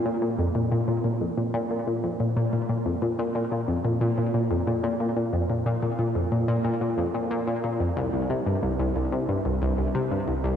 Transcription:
X:1
M:4/4
L:1/16
Q:1/4=91
K:Cdor
V:1 name="Synth arpeggio sound" clef=bass
B,, B,, F,, B,, B,, B,, B,, F,, B,, B,, B,, B,, F,, B,, B,, B,, | B,, F,, B,, B,, B,, B,, F,, B,, B,, B,, B,, F,, B,, B,, B,, B,, | F,, B,, B,, B,, B,, F,, B,, B,, B,, B,, F,, B,, B,, B,, B,, F,, | C,, C,, C, G,, C,, C,, C,, C, G,, C,, C,, C,, C, G,, C,, C,, |]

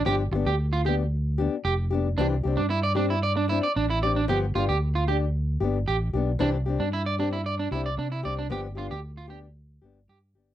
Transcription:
X:1
M:4/4
L:1/16
Q:1/4=114
K:C
V:1 name="Clean electric guitar"
G z2 G z F G z4 z G z3 | D z2 D E d D E d D E d D E d D | G z F G z F G z4 z G z3 | D z2 D E d D E d D E d D E d D |
G z F G z F G z4 z G z3 |]
V:2 name="Steel-string acoustic guitar"
[F,DG]2 [B,DG]2 z2 [B,DG]2 z2 [B,DG]2 z2 [B,DG]2 | [E,CDG]2 [CDG]2 z2 [CDG]2 z2 [CD]2 z2 [CDG]2 | [F,B,G]2 [B,DG]2 z2 [DG]2 z2 [B,DG]2 z2 [B,DG]2 | [E,CDG]2 [CDG]2 z2 [CDG]2 z2 [CDG]2 z2 [CDG]2 |
[F,B,DG]2 [B,DG]2 z2 [B,DG]2 z2 [B,DG]2 z2 [B,DG]2 |]
V:3 name="Fingered electric bass" clef=bass
G,,,2 G,,, D,,8 z F,,,4 | C,,2 C,, G,,8 z A,,,4 | G,,,2 G,,, D,,6- D,, G,,,2 A,,,2 B,,,2 | C,,3 G,,6- G,, C,,2 C,2 C,,2 |
G,,,3 D,,6- D,, G,,,2 G,,2 G,,,2 |]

